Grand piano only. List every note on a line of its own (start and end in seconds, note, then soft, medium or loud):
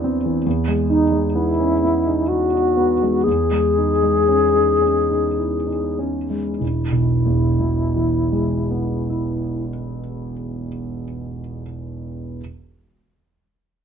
0.00 0.42 E2 soft
0.00 0.25 E3 soft
0.00 0.48 F#3 soft
0.00 0.04 C4 soft
0.00 0.48 D4 soft
0.00 0.48 E4 soft
0.04 0.38 C4 soft
0.25 0.46 E3 soft
0.46 3.22 E2 soft
0.68 1.03 G#3 soft
0.90 1.26 D#4 soft
1.12 1.49 G#3 soft
1.35 1.73 B3 soft
1.60 1.83 C#4 soft
1.83 2.20 B3 soft
2.07 2.44 D#4 soft
2.30 2.53 E4 soft
2.54 2.92 D#4 soft
2.77 3.16 B3 soft
3.02 3.26 G#3 soft
3.27 6.57 E2 soft
3.51 3.92 G#3 soft
3.78 4.18 D#4 soft
4.03 4.45 G#3 soft
4.28 4.71 C#4 soft
4.55 4.82 D#4 soft
4.82 5.27 C#4 soft
5.10 5.56 D#4 soft
5.39 5.68 E4 soft
5.67 6.18 D#4 soft
5.99 6.49 C#4 soft
6.30 6.61 G#3 soft
6.61 9.68 E1 soft
6.92 9.99 B1 soft
7.26 10.33 E2 soft
7.60 10.67 B2 soft
7.96 11.03 E3 soft
8.32 11.39 G#3 soft
8.71 11.63 B3 soft
9.10 11.63 E4 soft